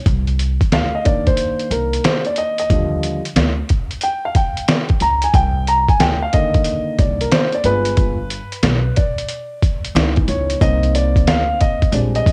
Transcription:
0.06 C2, kick, closed hi-hat
0.27 closed hi-hat
0.39 closed hi-hat
0.61 kick, closed hi-hat
0.72 D2 F5, snare, closed hi-hat
0.95 D#5
1.04 D#3 A#3 D4 D5, kick, closed hi-hat
1.27 C5, kick, closed hi-hat
1.37 closed hi-hat
1.59 closed hi-hat
1.71 C2 A#4, closed hi-hat
1.93 closed hi-hat
2.04 C5, snare, closed hi-hat
2.25 D5, closed hi-hat
2.36 D#5, closed hi-hat
2.58 D#5, closed hi-hat
2.70 D#2 D3 F3 G3, kick, closed hi-hat
3.03 closed hi-hat
3.25 closed hi-hat
3.36 D2, snare, closed hi-hat
3.69 kick, closed hi-hat
3.91 closed hi-hat
4.01 G5, closed hi-hat
4.25 F5
4.35 G5, kick, closed hi-hat
4.57 closed hi-hat
4.68 snare, closed hi-hat
4.89 kick, closed hi-hat
5.00 C#2 A#5, closed hi-hat
5.22 G#5, closed hi-hat
5.34 C2 G5, kick, closed hi-hat
5.67 A#5, closed hi-hat
5.89 G#5, kick, closed hi-hat
6.00 D2 G5, snare, closed hi-hat
6.22 F5
6.33 D3 D#3 A#3 D#5, kick, closed hi-hat
6.54 kick, closed hi-hat
6.64 closed hi-hat
6.98 C2 D5, kick, closed hi-hat
7.21 A#4, closed hi-hat
7.31 C5, snare, closed hi-hat
7.52 D5, closed hi-hat
7.64 G1 G#3 B3 F4 B4, closed hi-hat
7.85 closed hi-hat
7.97 kick, closed hi-hat
8.30 closed hi-hat
8.52 closed hi-hat
8.63 B1, snare, closed hi-hat
8.96 D5, kick, closed hi-hat
9.18 closed hi-hat
9.28 closed hi-hat
9.62 kick, closed hi-hat
9.84 closed hi-hat
9.95 C#2 E3 B3 D#4, snare, closed hi-hat
10.16 kick, closed hi-hat
10.28 C#2 C#5, closed hi-hat
10.50 closed hi-hat
10.61 C2 A#3 C4 D#4 D#5, kick, closed hi-hat
10.83 closed hi-hat
10.95 D5, closed hi-hat
11.16 kick, closed hi-hat
11.26 D2 F5, snare, closed hi-hat
11.61 D#5, kick, closed hi-hat
11.82 kick, closed hi-hat
11.92 A#1 G3 G#3 C4 D4 D5, closed hi-hat
12.15 D#5, closed hi-hat
12.26 G1, kick, closed hi-hat

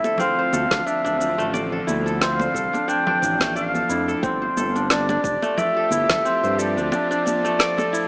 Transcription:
Already playing: D3 F3 A3 C4 D4 E4 D5 E5
0.04 A4, muted conga, cabasa
0.18 C4 F5, low conga, cabasa
0.39 C5
0.53 D2 A4, high conga, cabasa
0.71 D2 D4, kick, snare, low conga, cabasa
0.86 D4 E5, cabasa
1.04 D1 D4, cabasa
1.20 D4, cabasa
1.38 A1 A3, cabasa
1.53 D4 D5, muted conga, cabasa
1.72 A4
1.87 D2 E4, high conga, cabasa
2.06 A4, cabasa
2.21 C4 F5, snare, cabasa
2.39 C5, muted conga, cabasa
2.54 C2 A4, kick, cabasa
2.73 D4, muted conga, high conga, cabasa
2.88 D4 G5, cabasa
3.07 D4, low conga
3.22 A1 D4, cabasa
3.40 A3, kick, snare, high conga, cabasa
3.56 D5 F5, cabasa
3.74 A4, high conga, cabasa
3.89 F2 E4, cabasa
4.08 A4, cabasa
4.23 G1 F3 C4 G4, kick, muted conga, cabasa
4.42 C5
4.57 G1 A4, high conga, cabasa
4.75 D4, cabasa
4.90 D4 D5, snare, cabasa
5.09 D4, muted conga, cabasa
5.24 F1 D4, kick, cabasa
5.42 A3, muted conga, cabasa
5.57 D5 E5, low conga, cabasa
5.77 A4
5.91 G1 E4, high conga, cabasa
6.10 G1 A4, kick, snare, low conga, cabasa
6.25 C4, cabasa
6.43 G2 C5, cabasa
6.58 A4 D5, cabasa
6.77 D2 D4, cabasa
6.92 D4 A4, muted conga, cabasa
7.11 D4, cabasa
7.26 D4, high conga, cabasa
7.45 A3, cabasa
7.59 D5, snare, cabasa
7.77 A4, muted conga, cabasa
7.93 E4, cabasa

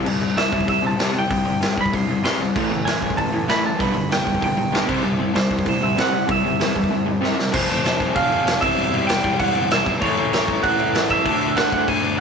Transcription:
0.04 C2 C3 G3, crash
0.22 C3 G3
0.35 C2 C3 G3 E5, snare, open hi-hat
0.51 C2 C3 G3, kick
0.60 kick
0.66 C2 C3 G3 E5, kick, open hi-hat
0.82 C3 G3
0.87 A5
0.97 C3 G3 C4, snare, open hi-hat
1.13 C3 G3
1.19 G5
1.29 C2 C3 G3, kick, open hi-hat
1.45 C3 G3
1.60 G1 C3 G3, snare, open hi-hat
1.76 C3 G3, kick
1.81 B5
1.86 kick
1.93 C2 C3 G3 C6, kick, open hi-hat
2.07 C2 C3 G3
2.22 G2 C3 G3 C4 C6, snare, open hi-hat
2.38 C2 C3 G3
2.56 A1 A2 E3 A3, kick, crash
2.72 A2 E3
2.85 A1 A2 E3 G#5, snare, open hi-hat
3.02 A1 A2 E3, kick
3.10 kick
3.17 A1 A2 E3 A5, kick, open hi-hat
3.32 A2 E3
3.47 A2 E3 A3 B5, snare, open hi-hat
3.64 A2 E3 A5
3.78 B1 G2 B2 D3 G3 B3 B5, kick, open hi-hat
3.94 G2 B2 D3 G3
4.09 F#1 G2 B2 D3 G3 G5, snare, open hi-hat
4.24 G2 B2 D3 G3, kick
4.35 kick
4.41 B1 G2 B2 D3 G3 G5, kick, open hi-hat
4.57 B1 G2 B2 D3 G3
4.72 B1 G2 B2 D3 G3 B3, snare, open hi-hat
4.87 C2 C3 G3 C4, kick, crash
5.03 C2 C3 G3
5.19 C3 G3
5.34 C2 C3 G3 C5, snare, open hi-hat
5.49 C2 C3 G3, kick
5.59 kick
5.65 C2 C3 G3 C5, kick, open hi-hat
5.81 C3 G3 E5
5.96 C3 G3 C4, snare, open hi-hat
6.00 F#5
6.12 C3 G3
6.28 C2 C3 G3 E5, kick, open hi-hat
6.44 C3 G3
6.59 E2 C3 G3, snare, open hi-hat
6.75 C3 G3, kick
6.83 kick
6.90 C3 G3
7.06 C3 G3
7.21 C3 G3 C4, snare
7.37 C3 G3, snare
7.51 F1 F2 C3 F3 C5, kick, crash
7.68 F1 C5, crash
7.83 F1 C5, snare, crash
8.00 kick, crash
8.15 F1 F5, kick, crash
8.29 F2, crash
8.45 F1, snare, crash
8.60 E1 C3 G3 C4 E5, kick, crash
8.76 E1, crash
8.94 crash
9.07 E1 G5, snare, crash
9.24 E1, kick, crash
9.39 E1 F#5, kick, crash
9.55 E1, crash
9.71 E1 E5, snare, crash
9.86 B1, kick, crash
9.99 A1 A2 E3 A3 C#5, kick, crash
10.17 A1, crash
10.32 A1 C#5, snare, crash
10.48 kick, crash
10.63 A1 F#5, kick, crash
10.78 A2, crash
10.93 A1, snare, crash
11.10 E5, kick, crash
11.25 D2 D3 A3 D4, kick, crash
11.41 crash
11.56 D2 F#5, snare, crash
11.72 D2 F#5, kick, crash
11.88 D2 G#5, kick, crash
12.03 D2, crash

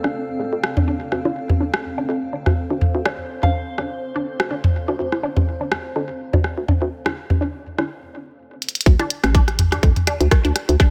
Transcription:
Already playing: C4 A4 D5 F5
0.04 D4, cross-stick
0.39 A3
0.53 F2
0.64 cross-stick
0.77 D4, mid tom
0.88 D4
1.12 D2, cross-stick
1.25 D4, low bongo
1.49 A1, mid tom
1.60 D4
1.71 C5, cross-stick
1.98 G2 D4
2.09 F2
2.33 D4
2.46 D2, cross-stick, mid tom
2.70 D2 D4
2.81 mid tom
2.95 D2
3.06 D4, cross-stick
3.43 A1 D4 F5, mid tom
3.78 D4, cross-stick
3.91 G2
4.16 D4
4.40 D2, cross-stick
4.51 D4
4.64 mid tom
4.88 D2 D4
4.99 D2
5.12 cross-stick, low bongo
5.23 D4
5.37 A1, mid tom
5.61 D4
5.72 cross-stick
5.85 G2
5.96 F2 D4
6.33 D2 D4, mid tom
6.44 cross-stick
6.58 D2
6.68 D4, mid tom
6.82 D2
7.06 D4, cross-stick, low bongo
7.30 A1, mid tom
7.41 D4
7.78 G2 D4, cross-stick, low bongo
8.62 closed hi-hat
8.69 closed hi-hat
8.75 closed hi-hat
8.81 closed hi-hat
8.86 D2, kick, closed hi-hat
8.99 D4, cross-stick, closed hi-hat, low bongo
9.10 closed hi-hat
9.24 A1, cross-stick, closed hi-hat
9.35 D4, kick, closed hi-hat
9.48 cross-stick, closed hi-hat
9.59 closed hi-hat, mid tom
9.72 G2 D4, cross-stick, closed hi-hat
9.83 F2, kick, closed hi-hat
9.96 closed hi-hat, mid tom
10.07 D4, cross-stick, closed hi-hat
10.21 D2, closed hi-hat
10.31 kick, cross-stick, closed hi-hat
10.45 D2 D4, closed hi-hat
10.56 cross-stick, closed hi-hat
10.69 D2, closed hi-hat
10.80 D4, kick, cross-stick, closed hi-hat

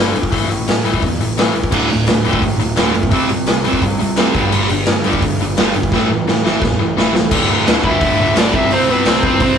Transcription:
Already playing: G1 G2 D3
0.00 G3
0.13 B1 G2 D3, open hi-hat
0.23 kick
0.32 A1 A2 E3 A3, kick, open hi-hat
0.49 A1 A2 E3, open hi-hat
0.68 A2 E3, snare, open hi-hat
0.85 A1 A2 E3 A3, open hi-hat
0.94 kick
1.02 E2 A2 E3, kick, open hi-hat
1.20 A1 A2 E3, open hi-hat
1.37 A1 A2 E3 A3, snare, open hi-hat
1.55 C#2 A2 E3, open hi-hat
1.64 kick
1.71 D1 D2 A2 D3, kick, crash
1.90 D1 D2 A2, open hi-hat
2.06 D2 A2, snare, open hi-hat
2.23 D1 D2 A2 D3, open hi-hat
2.33 kick
2.41 A1 D2 A2, kick, open hi-hat
2.58 D1 D2 A2, open hi-hat
2.76 D1 D2 A2 D3, snare, open hi-hat
2.94 F#1 D2 A2, open hi-hat
3.03 kick
3.11 C2 C3 G3 C4, kick, open hi-hat
3.29 C2 C3 G3, open hi-hat
3.46 C2 C3 G3, snare, open hi-hat
3.64 C2 C3 G3 C4, open hi-hat
3.73 kick
3.82 G1 C3 G3, kick, open hi-hat
3.99 C2 C3 G3, open hi-hat
4.16 C2 C3 G3 C4, snare, open hi-hat
4.34 G1 G2 D3 G3, kick, open hi-hat
4.51 G1 G2 D3 G3, crash
4.69 G1 G2 D3, open hi-hat
4.86 G2 D3, snare, open hi-hat
5.04 G1 G2 D3 G3, open hi-hat
5.13 kick
5.22 D2 G2 D3, kick, open hi-hat
5.39 G1 G2 D3, open hi-hat
5.57 G1 G2 D3 G3, snare, open hi-hat
5.74 G1 G2 D3, open hi-hat
5.83 kick
5.92 A1 A2 E3 A3, kick, snare
6.09 A1 A2 E3
6.26 A2 E3, snare
6.44 A1 A2 E3 A3, snare
6.61 E2 A2 E3, kick, snare
6.78 A1 A2 E3
6.96 A1 A2 E3 A3, snare
7.14 C#2 A2 E3, snare
7.30 D1 D2 A2 D3, kick, crash
7.50 D2 A2 D3
7.65 D1 D2 A2 D3, snare, open hi-hat
7.83 D1 D2 A2 D3 E4, kick
7.87 E5
8.01 D1 D2 A2 D3, kick, open hi-hat
8.18 D1 D2 A2 D3
8.36 B1 D2 A2 D3 D4, snare, open hi-hat
8.40 D5
8.53 C2 C3 G3 C4 E4 E5, kick
8.69 C2 C3 G3 C4, open hi-hat
8.73 C5
8.88 C3 G3 B3 C4 B4
9.05 C2 C3 G3 C4 C5, snare, open hi-hat
9.23 C2 C3 G3 C4, kick
9.40 C2 C3 G3 C4 C5, kick, open hi-hat

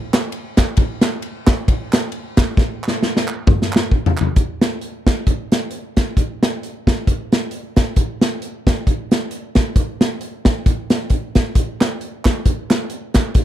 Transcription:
0.13 snare, clap, ride
0.32 ride
0.57 kick, snare, clap, ride
0.77 kick, ride
1.01 snare, clap, ride
1.22 ride
1.47 kick, snare, clap, ride
1.68 kick, ride
1.93 snare, clap, ride
2.12 ride
2.37 kick, snare, clap, ride
2.57 kick, snare
2.84 clap
2.88 snare
3.03 snare
3.17 snare
3.28 clap
3.47 kick, mid tom
3.62 snare
3.72 snare, clap
3.91 kick
4.06 floor tom
4.17 clap, floor tom
4.36 kick, closed hi-hat
4.61 snare, closed hi-hat
4.81 closed hi-hat
5.07 kick, snare, closed hi-hat
5.27 kick, closed hi-hat
5.52 snare, closed hi-hat
5.71 closed hi-hat
5.97 kick, snare, closed hi-hat
6.17 kick, closed hi-hat
6.43 snare, closed hi-hat
6.63 closed hi-hat
6.87 kick, snare, closed hi-hat
7.07 kick, closed hi-hat
7.32 snare, closed hi-hat
7.51 closed hi-hat
7.76 kick, snare, closed hi-hat
7.96 kick, closed hi-hat
8.21 snare, closed hi-hat
8.42 closed hi-hat
8.67 kick, snare, closed hi-hat
8.87 kick, closed hi-hat
9.11 snare, closed hi-hat
9.31 closed hi-hat
9.55 kick, snare, closed hi-hat
9.76 kick, closed hi-hat
10.01 snare, closed hi-hat
10.21 closed hi-hat
10.45 kick, snare, closed hi-hat
10.66 kick, closed hi-hat
10.90 snare, closed hi-hat
11.10 kick, closed hi-hat
11.35 kick, snare, closed hi-hat
11.55 kick, closed hi-hat
11.81 snare, clap, closed hi-hat
12.01 closed hi-hat
12.25 kick, snare, clap, closed hi-hat
12.45 kick, closed hi-hat
12.70 snare, clap, closed hi-hat
12.90 closed hi-hat
13.14 kick, snare, clap, closed hi-hat
13.35 kick, closed hi-hat

